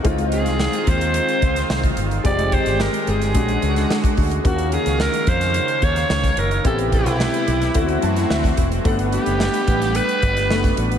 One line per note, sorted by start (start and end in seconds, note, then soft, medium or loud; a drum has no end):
0.03 0.46 C#2 loud
0.03 3.32 D#3 medium
0.03 2.20 G#3 medium
0.03 2.21 C4 medium
0.03 2.23 C4 medium
0.03 2.21 D#4 medium
0.03 2.23 F4 loud
0.03 2.21 F4 medium
0.03 kick loud
0.03 closed hi-hat medium
0.18 closed hi-hat medium
0.32 0.90 G#4 medium
0.32 closed hi-hat medium
0.46 0.67 C2 medium
0.46 snare soft
0.46 closed hi-hat soft
0.60 snare loud
0.73 closed hi-hat medium
0.87 1.18 D#2 medium
0.87 1.98 C5 loud
0.87 kick medium
0.87 closed hi-hat medium
1.01 closed hi-hat medium
1.14 closed hi-hat loud
1.29 closed hi-hat soft
1.42 1.63 C#2 medium
1.42 kick medium
1.42 closed hi-hat medium
1.56 snare soft
1.56 closed hi-hat medium
1.69 1.90 C2 medium
1.69 snare loud
1.84 kick loud
1.84 closed hi-hat soft
1.97 2.18 G1 medium
1.97 closed hi-hat medium
2.11 closed hi-hat soft
2.24 2.56 F1 loud
2.24 3.32 G#3 medium
2.24 4.43 G#3 medium
2.24 3.33 C4 medium
2.24 3.33 D#4 medium
2.24 3.34 G4 medium
2.24 3.33 G4 medium
2.24 2.55 D5 loud
2.24 kick loud
2.24 closed hi-hat medium
2.39 closed hi-hat medium
2.52 2.83 C5 loud
2.52 kick medium
2.52 closed hi-hat medium
2.66 2.87 G1 medium
2.66 snare soft
2.66 closed hi-hat medium
2.80 3.10 A#4 loud
2.80 snare loud
2.94 closed hi-hat medium
3.07 3.35 G1 medium
3.07 4.18 G#4 medium
3.07 closed hi-hat medium
3.22 snare soft
3.22 closed hi-hat medium
3.34 3.55 A#1 loud
3.34 4.44 D3 medium
3.34 4.42 G#3 medium
3.34 4.42 C#4 medium
3.34 4.43 D4 medium
3.34 4.44 F#4 medium
3.34 4.43 F#4 medium
3.34 kick loud
3.34 closed hi-hat loud
3.48 closed hi-hat soft
3.62 3.83 C#2 loud
3.62 closed hi-hat medium
3.76 snare soft
3.76 closed hi-hat medium
3.90 snare loud
4.04 kick loud
4.04 closed hi-hat medium
4.17 4.38 D2 medium
4.17 kick medium
4.17 open hi-hat medium
4.31 closed hi-hat medium
4.44 4.76 D#2 loud
4.44 6.63 C#3 medium
4.44 6.63 D#3 medium
4.44 6.60 A#3 medium
4.44 6.61 C#4 medium
4.44 6.61 F4 medium
4.44 6.62 F#4 medium
4.44 4.75 F#4 medium
4.44 6.63 F5 loud
4.44 kick loud
4.44 closed hi-hat medium
4.58 closed hi-hat medium
4.72 5.02 G#4 medium
4.72 closed hi-hat medium
4.86 5.07 C#2 medium
4.86 snare soft
4.86 closed hi-hat medium
5.00 5.30 A#4 loud
5.00 snare loud
5.14 closed hi-hat medium
5.27 5.58 F2 medium
5.27 5.85 C5 loud
5.27 kick loud
5.27 closed hi-hat medium
5.41 snare soft
5.41 closed hi-hat medium
5.54 closed hi-hat loud
5.68 closed hi-hat soft
5.82 6.03 D#2 loud
5.82 6.40 C#5 loud
5.82 kick medium
5.82 closed hi-hat medium
5.96 snare soft
5.96 closed hi-hat medium
6.10 6.31 C#2 medium
6.10 snare loud
6.24 kick medium
6.24 snare soft
6.24 closed hi-hat medium
6.37 6.58 F#1 medium
6.37 6.66 A#4 loud
6.37 closed hi-hat medium
6.51 closed hi-hat medium
6.64 7.06 A1 loud
6.64 7.74 C3 medium
6.64 7.72 B3 medium
6.64 7.73 C4 medium
6.64 7.73 E4 medium
6.64 7.74 G4 medium
6.64 7.73 G4 medium
6.64 6.78 A4 loud
6.64 7.74 B4 medium
6.64 kick loud
6.64 closed hi-hat medium
6.79 closed hi-hat medium
6.92 8.54 E4 loud
6.92 kick medium
6.92 closed hi-hat medium
7.06 7.27 B1 medium
7.06 snare soft
7.06 closed hi-hat medium
7.20 snare loud
7.34 closed hi-hat medium
7.48 7.68 B1 medium
7.48 closed hi-hat medium
7.62 snare soft
7.62 closed hi-hat medium
7.74 7.96 D2 medium
7.74 8.84 E3 medium
7.74 8.82 A3 medium
7.74 8.83 C4 medium
7.74 8.84 C4 medium
7.74 8.83 E4 medium
7.74 8.85 F#4 medium
7.74 8.84 F#4 medium
7.74 kick loud
7.74 closed hi-hat loud
7.88 closed hi-hat medium
8.02 8.23 F#2 medium
8.02 8.28 A5 medium
8.02 closed hi-hat medium
8.16 snare soft
8.16 closed hi-hat medium
8.30 8.51 D2 medium
8.30 8.81 E5 medium
8.30 snare loud
8.44 kick loud
8.44 snare soft
8.44 closed hi-hat soft
8.57 8.78 E1 medium
8.57 kick medium
8.57 closed hi-hat medium
8.72 closed hi-hat medium
8.84 9.16 G1 loud
8.84 10.98 G3 medium
8.84 10.46 A3 medium
8.84 10.47 B3 medium
8.84 10.98 B3 medium
8.84 10.47 D4 medium
8.84 10.98 B4 medium
8.84 10.48 F#5 loud
8.84 kick loud
8.84 closed hi-hat medium
8.99 closed hi-hat medium
9.12 9.97 G4 loud
9.12 closed hi-hat medium
9.26 9.47 F#1 medium
9.26 closed hi-hat medium
9.40 snare loud
9.54 closed hi-hat medium
9.68 9.99 A1 medium
9.68 kick medium
9.68 closed hi-hat medium
9.82 snare soft
9.82 closed hi-hat medium
9.95 10.78 B4 loud
9.95 closed hi-hat loud
10.09 closed hi-hat soft
10.22 10.50 G1 medium
10.22 kick medium
10.22 closed hi-hat medium
10.37 snare soft
10.37 closed hi-hat medium
10.50 10.71 F#1 medium
10.50 10.98 A3 medium
10.50 10.98 B3 medium
10.50 10.98 D4 soft
10.50 10.98 F#4 medium
10.50 snare loud
10.64 kick loud
10.64 snare soft
10.64 closed hi-hat medium
10.77 10.98 A1 medium
10.77 closed hi-hat medium
10.92 closed hi-hat medium